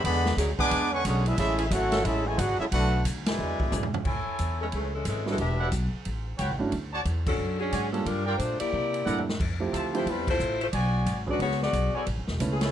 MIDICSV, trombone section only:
0, 0, Header, 1, 2, 480
1, 0, Start_track
1, 0, Key_signature, 3, "major"
1, 0, Tempo, 334076
1, 63, Time_signature, 4, 2, 24, 8
1, 18269, End_track
2, 0, Start_track
2, 0, Title_t, "Trombone section"
2, 0, Program_c, 0, 61
2, 42, Note_on_c, 0, 56, 96
2, 51, Note_on_c, 0, 59, 91
2, 52, Note_on_c, 0, 50, 94
2, 498, Note_off_c, 0, 56, 0
2, 502, Note_off_c, 0, 59, 0
2, 503, Note_off_c, 0, 50, 0
2, 838, Note_on_c, 0, 56, 104
2, 838, Note_on_c, 0, 59, 106
2, 840, Note_on_c, 0, 62, 103
2, 1286, Note_off_c, 0, 56, 0
2, 1286, Note_off_c, 0, 59, 0
2, 1287, Note_off_c, 0, 62, 0
2, 1324, Note_on_c, 0, 50, 88
2, 1324, Note_on_c, 0, 56, 82
2, 1324, Note_on_c, 0, 61, 92
2, 1476, Note_off_c, 0, 61, 0
2, 1480, Note_off_c, 0, 56, 0
2, 1481, Note_off_c, 0, 50, 0
2, 1493, Note_on_c, 0, 61, 84
2, 1497, Note_on_c, 0, 56, 85
2, 1498, Note_on_c, 0, 50, 84
2, 1774, Note_off_c, 0, 56, 0
2, 1776, Note_off_c, 0, 61, 0
2, 1778, Note_off_c, 0, 50, 0
2, 1791, Note_on_c, 0, 56, 87
2, 1802, Note_on_c, 0, 64, 83
2, 1803, Note_on_c, 0, 59, 84
2, 1974, Note_off_c, 0, 64, 0
2, 1975, Note_off_c, 0, 56, 0
2, 1981, Note_off_c, 0, 59, 0
2, 1987, Note_on_c, 0, 61, 86
2, 1991, Note_on_c, 0, 56, 83
2, 1991, Note_on_c, 0, 64, 93
2, 2360, Note_off_c, 0, 61, 0
2, 2362, Note_off_c, 0, 56, 0
2, 2362, Note_off_c, 0, 64, 0
2, 2474, Note_on_c, 0, 61, 83
2, 2475, Note_on_c, 0, 66, 86
2, 2480, Note_on_c, 0, 57, 87
2, 2922, Note_off_c, 0, 61, 0
2, 2940, Note_on_c, 0, 61, 84
2, 2943, Note_on_c, 0, 56, 84
2, 2945, Note_on_c, 0, 64, 81
2, 2946, Note_off_c, 0, 66, 0
2, 2948, Note_off_c, 0, 57, 0
2, 3235, Note_off_c, 0, 56, 0
2, 3239, Note_off_c, 0, 61, 0
2, 3242, Note_off_c, 0, 64, 0
2, 3250, Note_on_c, 0, 49, 78
2, 3252, Note_on_c, 0, 56, 84
2, 3257, Note_on_c, 0, 52, 80
2, 3423, Note_off_c, 0, 49, 0
2, 3424, Note_off_c, 0, 56, 0
2, 3426, Note_off_c, 0, 52, 0
2, 3435, Note_on_c, 0, 66, 83
2, 3726, Note_off_c, 0, 66, 0
2, 3731, Note_on_c, 0, 64, 84
2, 3732, Note_on_c, 0, 56, 78
2, 3732, Note_on_c, 0, 61, 78
2, 3808, Note_off_c, 0, 64, 0
2, 3809, Note_off_c, 0, 56, 0
2, 3809, Note_off_c, 0, 61, 0
2, 3910, Note_on_c, 0, 62, 77
2, 3914, Note_on_c, 0, 66, 86
2, 3916, Note_on_c, 0, 57, 88
2, 4349, Note_off_c, 0, 62, 0
2, 4351, Note_off_c, 0, 66, 0
2, 4352, Note_off_c, 0, 57, 0
2, 4697, Note_on_c, 0, 50, 79
2, 4702, Note_on_c, 0, 47, 81
2, 4704, Note_on_c, 0, 56, 79
2, 5588, Note_off_c, 0, 50, 0
2, 5590, Note_off_c, 0, 47, 0
2, 5591, Note_off_c, 0, 56, 0
2, 18269, End_track
0, 0, End_of_file